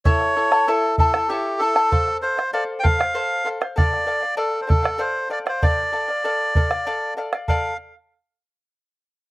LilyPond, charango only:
\new Staff \with { instrumentName = "Charango" } { \time 6/8 \key d \minor \tempo 4. = 65 <e' a' cis'' e'' a''>8 <e' a' e'' a''>16 <e' a' a''>16 <e' a' cis'' e'' a''>8 <e' a' e'' a''>16 <e' a' a''>16 <e' a' cis'' e'' a''>8 <e' a' e'' a''>16 <e' a' a''>16 | <a' c'' f''>8 <a' c'' f''>16 <c'' f''>16 <a' c'' f''>8 <a' c'' f''>16 <c'' f''>16 <a' c'' f''>8 <a' c'' f''>16 <c'' f''>16 | <a' d'' f''>8 <a' d'' f''>16 <d'' f''>16 <a' d'' f''>8 <a' d'' f''>16 <d'' f''>16 <a' d'' f''>8 <a' d'' f''>16 <d'' f''>16 | <a' d'' f''>8 <a' d'' f''>16 <d'' f''>16 <a' d'' f''>8 <a' d'' f''>16 <d'' f''>16 <a' d'' f''>8 <a' d'' f''>16 <d'' f''>16 |
<a' d'' f''>8 r2 r8 | }